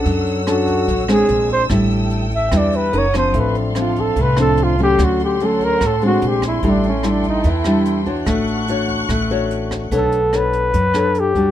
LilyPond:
<<
  \new Staff \with { instrumentName = "String section" } { \time 4/4 \key d \major \tempo 4 = 146 << { e'''1~ | e'''2. dis'''4 | c'''1~ | c'''1~ |
c'''1 | fis'''1 | r1 | } \\ { <cis'' fis''>2. <c'' aes''>4 | <a' g''>2. <ais' fis''>4 | <a' f''>1 | <cis'' fis''>2. <c'' aes''>4 |
<a' g''>1 | <fis'' cis'''>1 | r1 | } >> }
  \new Staff \with { instrumentName = "Flugelhorn" } { \time 4/4 \key d \major r4 fis'4. gis'4 c''8 | r4. e''8 d''8 b'8 cis''8 c''8 | b'8 d'8 f'8 a'8 b'8 a'8 f'8 g'8 | fis'8 g'8 a'8 bes'8 a'8 fis'8 g'8 e'8 |
d'8 cis'8 d'8 ees'8 e'4. r8 | r1 | a'4 b'2 g'4 | }
  \new Staff \with { instrumentName = "Nylon-string guitar" } { \time 4/4 \key d \major << { <cis' d' a'>4 <cis' d' a'>4 r8 <gis c' d'>4. | <g d' e'>4. r8 <g d' e'>4 <cis' dis' ais'>8 <f c' d'>8~ | <f c' d'>4 <f c' d'>4 r8 <f c' d'>4 <fis a cis'>8~ | <fis a cis'>4 <fis a cis'>4 r8 <gis c' d'>4. |
<g d' e'>8 r8 <g d' e'>4 r8 <g d' e'>4 <d' fis' cis''>8~ | <d' fis' cis''>4 <d' fis' cis''>4 r8 <d' fis' cis''>4. | <d' a' cis''>8 r8 <d' a' cis''>4 r8 <d' a' cis''>4 <g d' fis'>8 | } \\ { fis2 fis4 r4 | a,2 e4 r4 | a,2 a,2 | d2 a,4 r4 |
a,2 e2 | a2 a2 | b2 fis2 | } >> }
  \new Staff \with { instrumentName = "Upright bass" } { \clef bass \time 4/4 \key d \major fis,2 a,,4 bes,,4 | a,,2 e,4 fis,,4 | a,,2 c,2 | d,2 a,,4 bes,,4 |
a,,2 e,2 | a,,2 a,,2 | b,,2 fis,2 | }
  \new DrumStaff \with { instrumentName = "Drums" } \drummode { \time 4/4 <hh bd>8 hh8 <hh ss>8 <hh bd>8 <hh bd>8 <hh ss>8 hh8 <hh bd>8 | <hh bd ss>8 hh8 hh8 <hh bd>8 <hh bd ss>8 hh8 hh8 <hh bd ss>8 | <hh bd>8 hh8 <hh ss>8 <hh bd>8 <hh bd>8 <hh ss>8 hh8 <hh bd>8 | <hh bd ss>8 hh8 hh8 <hh bd>8 <hh bd ss>8 hh8 hh8 <hh bd ss>8 |
<hh bd>8 hh8 <hh ss>8 <hh bd>8 <hh bd>8 <hh ss>8 hh8 <hh bd>8 | <hh bd ss>8 hh8 hh8 <hh bd>8 <hh bd ss>8 hh8 hh8 <hh bd ss>8 | <hh bd>8 hh8 <hh ss>8 hh8 <hh bd>8 <hh ss>8 hh8 <hh bd>8 | }
>>